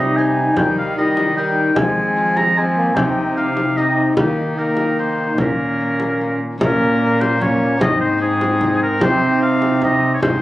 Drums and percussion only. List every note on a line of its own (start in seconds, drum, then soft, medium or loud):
0.57 frame drum medium
1.17 frame drum soft
1.76 frame drum medium
2.37 frame drum soft
2.97 frame drum medium
3.57 frame drum soft
4.17 frame drum medium
4.77 frame drum soft
5.38 frame drum medium
6.00 frame drum soft
6.61 frame drum medium
7.21 frame drum medium
7.41 frame drum medium
7.81 frame drum medium
8.41 frame drum medium
8.61 frame drum medium
9.01 frame drum medium
9.62 frame drum soft
9.82 frame drum medium
10.22 frame drum medium